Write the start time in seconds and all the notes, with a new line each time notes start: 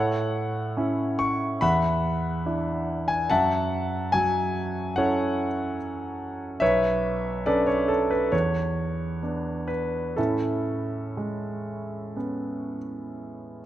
Already playing: A2 A4 C#5 F#5
0.77 C#4 E4
1.19 C#6
1.61 E2 E5 F#5 B5
2.46 D4 E4
3.08 G#5
3.30 F#2 E5 F#5 A5
4.12 F#3 G#5
4.96 C#4 E4 A4 C#5 F#5
6.60 B1 B4 C#5 E5
7.46 C#4 D4 A4 B4 D5
7.66 C#5
7.88 A4
8.10 B4
8.32 E2 C#5
9.22 B3 D4
9.68 B4
10.16 A2 C#4 E4 A4
11.17 G#3
12.16 B3 C#4